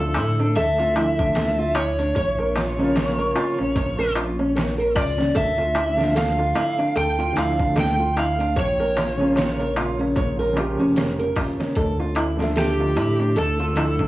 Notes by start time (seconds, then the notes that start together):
Already playing: D2 D3 F3 A3 A4 E5
0.00 F4
0.14 A2 E4, closed hi-hat, darbuka tek
0.39 D4, darbuka tek
0.56 D2 A4 E5, closed hi-hat, darbuka tek
0.78 F4, closed hi-hat, darbuka tek
0.94 D3 F3 E4, closed hi-hat, darbuka tek
0.99 A3
1.19 D4, kick, darbuka tek
1.35 A4, snare, closed hi-hat, darbuka tek
1.59 F4
1.75 E4 C#5, closed hi-hat, darbuka tek
1.99 D4, closed hi-hat, darbuka tek
2.15 A#1 C#5, kick, closed hi-hat, darbuka tek
2.38 A#4, darbuka tek
2.55 F4, snare, closed hi-hat, darbuka tek
2.76 C#3 F3 C#4, darbuka tek
2.81 A#3 F4
2.95 C#5, snare, closed hi-hat, darbuka tek
3.18 A#4, closed hi-hat, darbuka tek
3.35 F4, closed hi-hat, darbuka tek
3.58 A#1 C#4, darbuka tek
3.75 C#5, kick, closed hi-hat, darbuka tek
3.99 A#4, darbuka tek
4.15 F4, closed hi-hat, darbuka tek
4.39 C#4, darbuka tek
4.55 C#5, snare, closed hi-hat, darbuka tek
4.78 A#4, closed hi-hat
4.95 C#2 F4 D5, kick, open hi-hat, darbuka tek
5.18 C#4, snare, darbuka tek
5.35 D2 A4 E5, kick, closed hi-hat, darbuka tek
5.58 F4, darbuka tek
5.75 E4, closed hi-hat, darbuka tek
5.97 D3 F3 D4, snare, darbuka tek
6.01 A3 F5
6.15 A4 F5, snare, closed hi-hat, darbuka tek
6.38 F4, darbuka tek
6.55 E4, closed hi-hat, darbuka tek
6.78 D4, darbuka tek
6.96 D2 A4 G5, closed hi-hat, darbuka tek
7.19 F4, closed hi-hat, darbuka tek
7.33 D2 D3 F3 E4, closed hi-hat, darbuka tek
7.37 A3 F5
7.59 D4, kick, darbuka tek
7.76 A4, snare, closed hi-hat, darbuka tek
7.80 G5
7.99 F4
8.16 E4 F5, closed hi-hat, darbuka tek
8.39 D4, closed hi-hat, darbuka tek
8.56 A#1 C#5, kick, closed hi-hat, darbuka tek
8.80 A#4, darbuka tek
8.96 F4, snare, closed hi-hat, darbuka tek
9.17 C#3 F3 C#4, darbuka tek
9.22 A#3 F4
9.36 C#5, snare, closed hi-hat, darbuka tek
9.59 A#4, closed hi-hat, darbuka tek
9.76 F4, closed hi-hat, darbuka tek
9.99 C#4, darbuka tek
10.16 A#1 C#5, kick, closed hi-hat, darbuka tek
10.39 A#4, darbuka tek
10.53 C#3 F3 F4, closed hi-hat, darbuka tek
10.58 A#3 G4
10.79 F1 C#4, darbuka tek
10.96 C#5, snare, closed hi-hat, darbuka tek
11.19 A#4, closed hi-hat
11.36 F4, kick, open hi-hat, darbuka tek
11.60 C#4, snare, darbuka tek
11.75 D2 A4, kick, closed hi-hat, darbuka tek
12.00 F4, darbuka tek
12.15 E4, closed hi-hat, darbuka tek
12.37 D3 F3 D4, snare, darbuka tek
12.41 A3 E5
12.56 G4 A4, snare, closed hi-hat, darbuka tek
12.80 F4, darbuka tek
12.96 A2 E4, closed hi-hat, darbuka tek
13.19 D4, darbuka tek
13.36 D2 A4, closed hi-hat, darbuka tek
13.59 F4, closed hi-hat, darbuka tek
13.73 D3 F3 E4, closed hi-hat, darbuka tek
13.78 A3
13.99 D4, kick, darbuka tek